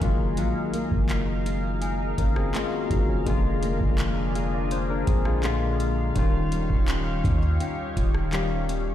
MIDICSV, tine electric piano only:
0, 0, Header, 1, 2, 480
1, 0, Start_track
1, 0, Key_signature, -5, "minor"
1, 0, Tempo, 722892
1, 249, Time_signature, 4, 2, 24, 8
1, 5940, End_track
2, 0, Start_track
2, 0, Title_t, "Tine electric piano"
2, 0, Program_c, 0, 4
2, 0, Control_c, 0, 64, 127
2, 0, Note_on_c, 0, 51, 67
2, 6, Note_on_c, 0, 56, 63
2, 18, Control_c, 0, 64, 0
2, 18, Note_on_c, 0, 58, 64
2, 31, Note_on_c, 0, 65, 80
2, 151, Control_c, 0, 64, 127
2, 1421, Note_off_c, 0, 56, 0
2, 1427, Note_off_c, 0, 58, 0
2, 1433, Note_off_c, 0, 65, 0
2, 1452, Note_on_c, 0, 70, 65
2, 1456, Note_on_c, 0, 61, 55
2, 1565, Note_off_c, 0, 70, 0
2, 1567, Note_off_c, 0, 61, 0
2, 1572, Note_on_c, 0, 68, 70
2, 1576, Note_on_c, 0, 60, 59
2, 1684, Note_off_c, 0, 68, 0
2, 1686, Note_off_c, 0, 60, 0
2, 1693, Note_on_c, 0, 65, 73
2, 1697, Note_on_c, 0, 56, 63
2, 1805, Note_off_c, 0, 65, 0
2, 1807, Note_off_c, 0, 56, 0
2, 1814, Note_on_c, 0, 66, 68
2, 1817, Note_on_c, 0, 58, 58
2, 1895, Note_off_c, 0, 51, 0
2, 1926, Note_off_c, 0, 66, 0
2, 1927, Note_off_c, 0, 58, 0
2, 1933, Note_on_c, 0, 63, 65
2, 1936, Note_on_c, 0, 54, 56
2, 2045, Note_off_c, 0, 63, 0
2, 2047, Note_off_c, 0, 54, 0
2, 2053, Note_on_c, 0, 61, 63
2, 2056, Note_on_c, 0, 53, 54
2, 2153, Note_on_c, 0, 50, 71
2, 2166, Note_on_c, 0, 56, 63
2, 2177, Note_on_c, 0, 58, 63
2, 2178, Control_c, 0, 64, 0
2, 2189, Note_on_c, 0, 65, 81
2, 2279, Note_off_c, 0, 61, 0
2, 2281, Note_off_c, 0, 53, 0
2, 2312, Control_c, 0, 64, 127
2, 2873, Note_off_c, 0, 56, 0
2, 2879, Note_off_c, 0, 58, 0
2, 2885, Note_off_c, 0, 65, 0
2, 2894, Note_on_c, 0, 77, 65
2, 2898, Note_on_c, 0, 68, 54
2, 3006, Note_off_c, 0, 77, 0
2, 3008, Note_off_c, 0, 68, 0
2, 3014, Note_on_c, 0, 74, 66
2, 3017, Note_on_c, 0, 65, 55
2, 3125, Note_off_c, 0, 74, 0
2, 3127, Note_off_c, 0, 65, 0
2, 3133, Note_on_c, 0, 72, 75
2, 3245, Note_off_c, 0, 72, 0
2, 3255, Note_on_c, 0, 70, 76
2, 3258, Note_on_c, 0, 62, 59
2, 3366, Note_off_c, 0, 70, 0
2, 3368, Note_off_c, 0, 62, 0
2, 3373, Note_on_c, 0, 68, 69
2, 3378, Note_on_c, 0, 60, 60
2, 3485, Note_off_c, 0, 68, 0
2, 3487, Note_off_c, 0, 60, 0
2, 3494, Note_on_c, 0, 65, 63
2, 3498, Note_on_c, 0, 56, 50
2, 3574, Note_off_c, 0, 50, 0
2, 3602, Note_off_c, 0, 56, 0
2, 3603, Note_on_c, 0, 50, 76
2, 3610, Note_on_c, 0, 56, 71
2, 3614, Note_off_c, 0, 65, 0
2, 3616, Note_on_c, 0, 58, 71
2, 3618, Control_c, 0, 64, 0
2, 3622, Note_on_c, 0, 65, 85
2, 3744, Control_c, 0, 64, 127
2, 4075, Note_on_c, 0, 51, 75
2, 4086, Note_off_c, 0, 50, 0
2, 4086, Note_on_c, 0, 55, 67
2, 4089, Note_off_c, 0, 56, 0
2, 4092, Note_off_c, 0, 58, 0
2, 4095, Note_off_c, 0, 65, 0
2, 4099, Control_c, 0, 64, 0
2, 4099, Note_on_c, 0, 61, 67
2, 4111, Note_on_c, 0, 65, 82
2, 4227, Control_c, 0, 64, 127
2, 5495, Note_off_c, 0, 51, 0
2, 5501, Note_off_c, 0, 55, 0
2, 5507, Note_off_c, 0, 61, 0
2, 5513, Note_off_c, 0, 65, 0
2, 5522, Note_on_c, 0, 51, 59
2, 5529, Note_on_c, 0, 55, 56
2, 5535, Note_on_c, 0, 61, 54
2, 5541, Note_on_c, 0, 67, 62
2, 5940, Note_off_c, 0, 51, 0
2, 5940, Note_off_c, 0, 55, 0
2, 5940, Note_off_c, 0, 61, 0
2, 5940, Note_off_c, 0, 67, 0
2, 5940, End_track
0, 0, End_of_file